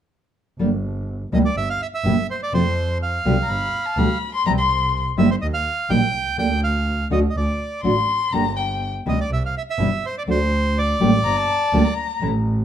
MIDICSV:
0, 0, Header, 1, 5, 480
1, 0, Start_track
1, 0, Key_signature, -2, "minor"
1, 0, Tempo, 484262
1, 578, Time_signature, 4, 2, 24, 8
1, 12536, End_track
2, 0, Start_track
2, 0, Title_t, "Violin"
2, 0, Program_c, 0, 40
2, 3396, Note_on_c, 0, 82, 51
2, 3463, Note_on_c, 0, 83, 70
2, 3478, Note_off_c, 0, 82, 0
2, 3823, Note_on_c, 0, 81, 66
2, 3838, Note_off_c, 0, 83, 0
2, 3944, Note_on_c, 0, 83, 76
2, 3959, Note_off_c, 0, 81, 0
2, 4298, Note_off_c, 0, 83, 0
2, 4302, Note_on_c, 0, 84, 84
2, 4409, Note_off_c, 0, 84, 0
2, 4426, Note_on_c, 0, 82, 84
2, 4477, Note_off_c, 0, 82, 0
2, 4537, Note_on_c, 0, 84, 75
2, 4979, Note_off_c, 0, 84, 0
2, 7754, Note_on_c, 0, 84, 78
2, 8250, Note_on_c, 0, 82, 79
2, 8265, Note_off_c, 0, 84, 0
2, 8481, Note_off_c, 0, 82, 0
2, 8487, Note_on_c, 0, 79, 58
2, 8826, Note_off_c, 0, 79, 0
2, 11139, Note_on_c, 0, 82, 80
2, 11265, Note_on_c, 0, 81, 82
2, 11280, Note_off_c, 0, 82, 0
2, 11738, Note_on_c, 0, 82, 78
2, 11753, Note_off_c, 0, 81, 0
2, 12099, Note_off_c, 0, 82, 0
2, 12536, End_track
3, 0, Start_track
3, 0, Title_t, "Bandoneon"
3, 0, Program_c, 1, 23
3, 1324, Note_on_c, 1, 75, 65
3, 1373, Note_off_c, 1, 75, 0
3, 1439, Note_on_c, 1, 74, 66
3, 1543, Note_off_c, 1, 74, 0
3, 1559, Note_on_c, 1, 76, 77
3, 1675, Note_off_c, 1, 76, 0
3, 1683, Note_on_c, 1, 77, 76
3, 1797, Note_off_c, 1, 77, 0
3, 1806, Note_on_c, 1, 76, 77
3, 1855, Note_off_c, 1, 76, 0
3, 1927, Note_on_c, 1, 76, 79
3, 2251, Note_off_c, 1, 76, 0
3, 2286, Note_on_c, 1, 72, 67
3, 2387, Note_off_c, 1, 72, 0
3, 2409, Note_on_c, 1, 74, 66
3, 2508, Note_off_c, 1, 74, 0
3, 2517, Note_on_c, 1, 72, 73
3, 2955, Note_off_c, 1, 72, 0
3, 3000, Note_on_c, 1, 77, 79
3, 4145, Note_off_c, 1, 77, 0
3, 5138, Note_on_c, 1, 76, 71
3, 5256, Note_off_c, 1, 76, 0
3, 5259, Note_on_c, 1, 72, 64
3, 5310, Note_off_c, 1, 72, 0
3, 5369, Note_on_c, 1, 75, 72
3, 5422, Note_off_c, 1, 75, 0
3, 5487, Note_on_c, 1, 77, 91
3, 5846, Note_on_c, 1, 79, 85
3, 5855, Note_off_c, 1, 77, 0
3, 6315, Note_off_c, 1, 79, 0
3, 6329, Note_on_c, 1, 79, 85
3, 6549, Note_off_c, 1, 79, 0
3, 6578, Note_on_c, 1, 77, 79
3, 7017, Note_off_c, 1, 77, 0
3, 7060, Note_on_c, 1, 75, 65
3, 7133, Note_off_c, 1, 75, 0
3, 7234, Note_on_c, 1, 75, 47
3, 7294, Note_off_c, 1, 75, 0
3, 7304, Note_on_c, 1, 74, 60
3, 7743, Note_off_c, 1, 74, 0
3, 9006, Note_on_c, 1, 75, 64
3, 9114, Note_off_c, 1, 75, 0
3, 9125, Note_on_c, 1, 74, 67
3, 9223, Note_off_c, 1, 74, 0
3, 9246, Note_on_c, 1, 76, 71
3, 9345, Note_off_c, 1, 76, 0
3, 9372, Note_on_c, 1, 77, 76
3, 9468, Note_off_c, 1, 77, 0
3, 9493, Note_on_c, 1, 76, 78
3, 9539, Note_off_c, 1, 76, 0
3, 9615, Note_on_c, 1, 76, 74
3, 9969, Note_on_c, 1, 72, 70
3, 9970, Note_off_c, 1, 76, 0
3, 10068, Note_off_c, 1, 72, 0
3, 10092, Note_on_c, 1, 74, 74
3, 10139, Note_off_c, 1, 74, 0
3, 10215, Note_on_c, 1, 72, 81
3, 10687, Note_on_c, 1, 74, 77
3, 10691, Note_off_c, 1, 72, 0
3, 11835, Note_off_c, 1, 74, 0
3, 12536, End_track
4, 0, Start_track
4, 0, Title_t, "Nylon-string guitar"
4, 0, Program_c, 2, 24
4, 588, Note_on_c, 2, 50, 62
4, 589, Note_on_c, 2, 55, 66
4, 593, Note_on_c, 2, 58, 60
4, 595, Note_on_c, 2, 62, 65
4, 596, Note_on_c, 2, 67, 65
4, 673, Note_off_c, 2, 50, 0
4, 673, Note_off_c, 2, 55, 0
4, 675, Note_off_c, 2, 58, 0
4, 676, Note_off_c, 2, 62, 0
4, 677, Note_off_c, 2, 67, 0
4, 1312, Note_on_c, 2, 48, 67
4, 1314, Note_on_c, 2, 55, 71
4, 1314, Note_on_c, 2, 58, 73
4, 1317, Note_on_c, 2, 64, 66
4, 1318, Note_on_c, 2, 67, 71
4, 1397, Note_off_c, 2, 48, 0
4, 1398, Note_off_c, 2, 55, 0
4, 1398, Note_off_c, 2, 58, 0
4, 1399, Note_off_c, 2, 64, 0
4, 1400, Note_off_c, 2, 67, 0
4, 2030, Note_on_c, 2, 48, 60
4, 2033, Note_on_c, 2, 55, 59
4, 2037, Note_on_c, 2, 58, 61
4, 2037, Note_on_c, 2, 64, 62
4, 2042, Note_on_c, 2, 67, 77
4, 2117, Note_off_c, 2, 48, 0
4, 2118, Note_off_c, 2, 55, 0
4, 2120, Note_off_c, 2, 58, 0
4, 2120, Note_off_c, 2, 64, 0
4, 2122, Note_off_c, 2, 67, 0
4, 2507, Note_on_c, 2, 48, 69
4, 2508, Note_on_c, 2, 53, 66
4, 2512, Note_on_c, 2, 57, 65
4, 2515, Note_on_c, 2, 60, 66
4, 2516, Note_on_c, 2, 65, 70
4, 2594, Note_off_c, 2, 48, 0
4, 2594, Note_off_c, 2, 53, 0
4, 2596, Note_off_c, 2, 57, 0
4, 2598, Note_off_c, 2, 60, 0
4, 2598, Note_off_c, 2, 65, 0
4, 3223, Note_on_c, 2, 47, 76
4, 3226, Note_on_c, 2, 50, 75
4, 3230, Note_on_c, 2, 55, 79
4, 3230, Note_on_c, 2, 59, 71
4, 3231, Note_on_c, 2, 67, 76
4, 3310, Note_off_c, 2, 47, 0
4, 3312, Note_off_c, 2, 50, 0
4, 3313, Note_off_c, 2, 59, 0
4, 3314, Note_off_c, 2, 55, 0
4, 3314, Note_off_c, 2, 67, 0
4, 3941, Note_on_c, 2, 47, 70
4, 3943, Note_on_c, 2, 50, 67
4, 3948, Note_on_c, 2, 59, 71
4, 3949, Note_on_c, 2, 55, 73
4, 3949, Note_on_c, 2, 67, 68
4, 4028, Note_off_c, 2, 47, 0
4, 4028, Note_off_c, 2, 50, 0
4, 4031, Note_off_c, 2, 55, 0
4, 4031, Note_off_c, 2, 59, 0
4, 4032, Note_off_c, 2, 67, 0
4, 4418, Note_on_c, 2, 48, 64
4, 4418, Note_on_c, 2, 52, 66
4, 4421, Note_on_c, 2, 55, 72
4, 4423, Note_on_c, 2, 60, 75
4, 4426, Note_on_c, 2, 64, 70
4, 4504, Note_off_c, 2, 48, 0
4, 4504, Note_off_c, 2, 52, 0
4, 4506, Note_off_c, 2, 55, 0
4, 4506, Note_off_c, 2, 60, 0
4, 4508, Note_off_c, 2, 64, 0
4, 5125, Note_on_c, 2, 51, 66
4, 5130, Note_on_c, 2, 55, 69
4, 5131, Note_on_c, 2, 58, 79
4, 5131, Note_on_c, 2, 63, 76
4, 5136, Note_on_c, 2, 67, 77
4, 5216, Note_off_c, 2, 51, 0
4, 5218, Note_off_c, 2, 55, 0
4, 5219, Note_off_c, 2, 58, 0
4, 5219, Note_off_c, 2, 63, 0
4, 5221, Note_off_c, 2, 67, 0
4, 5839, Note_on_c, 2, 51, 67
4, 5844, Note_on_c, 2, 55, 72
4, 5848, Note_on_c, 2, 58, 69
4, 5850, Note_on_c, 2, 63, 70
4, 5850, Note_on_c, 2, 67, 68
4, 5931, Note_off_c, 2, 51, 0
4, 5933, Note_off_c, 2, 55, 0
4, 5935, Note_off_c, 2, 58, 0
4, 5936, Note_off_c, 2, 63, 0
4, 5936, Note_off_c, 2, 67, 0
4, 6319, Note_on_c, 2, 50, 61
4, 6322, Note_on_c, 2, 58, 69
4, 6327, Note_on_c, 2, 62, 66
4, 6329, Note_on_c, 2, 67, 74
4, 6410, Note_off_c, 2, 50, 0
4, 6411, Note_off_c, 2, 58, 0
4, 6414, Note_off_c, 2, 62, 0
4, 6415, Note_off_c, 2, 67, 0
4, 7039, Note_on_c, 2, 50, 67
4, 7047, Note_on_c, 2, 57, 68
4, 7047, Note_on_c, 2, 62, 77
4, 7050, Note_on_c, 2, 66, 77
4, 7130, Note_off_c, 2, 50, 0
4, 7134, Note_off_c, 2, 57, 0
4, 7134, Note_off_c, 2, 62, 0
4, 7136, Note_off_c, 2, 66, 0
4, 7766, Note_on_c, 2, 50, 66
4, 7771, Note_on_c, 2, 62, 64
4, 7772, Note_on_c, 2, 57, 63
4, 7778, Note_on_c, 2, 66, 73
4, 7856, Note_off_c, 2, 50, 0
4, 7859, Note_off_c, 2, 57, 0
4, 7859, Note_off_c, 2, 62, 0
4, 7862, Note_off_c, 2, 66, 0
4, 8254, Note_on_c, 2, 50, 71
4, 8257, Note_on_c, 2, 55, 63
4, 8259, Note_on_c, 2, 58, 63
4, 8260, Note_on_c, 2, 62, 61
4, 8264, Note_on_c, 2, 67, 72
4, 8342, Note_off_c, 2, 50, 0
4, 8344, Note_off_c, 2, 55, 0
4, 8345, Note_off_c, 2, 58, 0
4, 8345, Note_off_c, 2, 62, 0
4, 8347, Note_off_c, 2, 67, 0
4, 8980, Note_on_c, 2, 48, 72
4, 8983, Note_on_c, 2, 52, 65
4, 8983, Note_on_c, 2, 60, 72
4, 8984, Note_on_c, 2, 55, 71
4, 8987, Note_on_c, 2, 64, 71
4, 9067, Note_off_c, 2, 48, 0
4, 9069, Note_off_c, 2, 52, 0
4, 9069, Note_off_c, 2, 60, 0
4, 9070, Note_off_c, 2, 55, 0
4, 9071, Note_off_c, 2, 64, 0
4, 9702, Note_on_c, 2, 48, 60
4, 9705, Note_on_c, 2, 52, 66
4, 9708, Note_on_c, 2, 55, 69
4, 9710, Note_on_c, 2, 60, 65
4, 9711, Note_on_c, 2, 64, 70
4, 9791, Note_off_c, 2, 48, 0
4, 9792, Note_off_c, 2, 52, 0
4, 9794, Note_off_c, 2, 55, 0
4, 9795, Note_off_c, 2, 60, 0
4, 9795, Note_off_c, 2, 64, 0
4, 10182, Note_on_c, 2, 50, 62
4, 10186, Note_on_c, 2, 57, 65
4, 10192, Note_on_c, 2, 62, 72
4, 10192, Note_on_c, 2, 66, 67
4, 10271, Note_off_c, 2, 50, 0
4, 10273, Note_off_c, 2, 57, 0
4, 10276, Note_off_c, 2, 62, 0
4, 10276, Note_off_c, 2, 66, 0
4, 10904, Note_on_c, 2, 55, 72
4, 10907, Note_on_c, 2, 50, 67
4, 10911, Note_on_c, 2, 62, 80
4, 10912, Note_on_c, 2, 58, 78
4, 10913, Note_on_c, 2, 67, 79
4, 10992, Note_off_c, 2, 55, 0
4, 10993, Note_off_c, 2, 50, 0
4, 10995, Note_off_c, 2, 62, 0
4, 10996, Note_off_c, 2, 58, 0
4, 10996, Note_off_c, 2, 67, 0
4, 11626, Note_on_c, 2, 50, 70
4, 11631, Note_on_c, 2, 55, 66
4, 11633, Note_on_c, 2, 58, 79
4, 11636, Note_on_c, 2, 62, 71
4, 11638, Note_on_c, 2, 67, 73
4, 11713, Note_off_c, 2, 50, 0
4, 11716, Note_off_c, 2, 55, 0
4, 11717, Note_off_c, 2, 58, 0
4, 11718, Note_off_c, 2, 62, 0
4, 11719, Note_off_c, 2, 67, 0
4, 12107, Note_on_c, 2, 52, 69
4, 12109, Note_on_c, 2, 57, 68
4, 12113, Note_on_c, 2, 61, 67
4, 12115, Note_on_c, 2, 64, 73
4, 12193, Note_off_c, 2, 52, 0
4, 12194, Note_off_c, 2, 57, 0
4, 12195, Note_off_c, 2, 61, 0
4, 12196, Note_off_c, 2, 64, 0
4, 12536, End_track
5, 0, Start_track
5, 0, Title_t, "Double bass"
5, 0, Program_c, 3, 43
5, 582, Note_on_c, 3, 31, 77
5, 1267, Note_off_c, 3, 31, 0
5, 1305, Note_on_c, 3, 38, 74
5, 1506, Note_off_c, 3, 38, 0
5, 1541, Note_on_c, 3, 31, 70
5, 1745, Note_off_c, 3, 31, 0
5, 2025, Note_on_c, 3, 31, 72
5, 2226, Note_off_c, 3, 31, 0
5, 2502, Note_on_c, 3, 41, 76
5, 3183, Note_off_c, 3, 41, 0
5, 3218, Note_on_c, 3, 36, 75
5, 3420, Note_off_c, 3, 36, 0
5, 3454, Note_on_c, 3, 31, 67
5, 3657, Note_off_c, 3, 31, 0
5, 3930, Note_on_c, 3, 38, 72
5, 4133, Note_off_c, 3, 38, 0
5, 4413, Note_on_c, 3, 36, 83
5, 5092, Note_off_c, 3, 36, 0
5, 5127, Note_on_c, 3, 31, 80
5, 5328, Note_off_c, 3, 31, 0
5, 5371, Note_on_c, 3, 39, 67
5, 5569, Note_off_c, 3, 39, 0
5, 5845, Note_on_c, 3, 34, 70
5, 6046, Note_off_c, 3, 34, 0
5, 6086, Note_on_c, 3, 36, 53
5, 6314, Note_off_c, 3, 36, 0
5, 6320, Note_on_c, 3, 38, 81
5, 7005, Note_off_c, 3, 38, 0
5, 7040, Note_on_c, 3, 38, 81
5, 7243, Note_off_c, 3, 38, 0
5, 7286, Note_on_c, 3, 38, 71
5, 7487, Note_off_c, 3, 38, 0
5, 7769, Note_on_c, 3, 33, 67
5, 7971, Note_off_c, 3, 33, 0
5, 8253, Note_on_c, 3, 31, 74
5, 8940, Note_off_c, 3, 31, 0
5, 8973, Note_on_c, 3, 38, 74
5, 9177, Note_off_c, 3, 38, 0
5, 9210, Note_on_c, 3, 36, 71
5, 9416, Note_off_c, 3, 36, 0
5, 9699, Note_on_c, 3, 31, 75
5, 9902, Note_off_c, 3, 31, 0
5, 10183, Note_on_c, 3, 38, 81
5, 10865, Note_off_c, 3, 38, 0
5, 10902, Note_on_c, 3, 33, 79
5, 11103, Note_off_c, 3, 33, 0
5, 11142, Note_on_c, 3, 31, 74
5, 11344, Note_off_c, 3, 31, 0
5, 11625, Note_on_c, 3, 38, 79
5, 11825, Note_off_c, 3, 38, 0
5, 12100, Note_on_c, 3, 33, 89
5, 12536, Note_off_c, 3, 33, 0
5, 12536, End_track
0, 0, End_of_file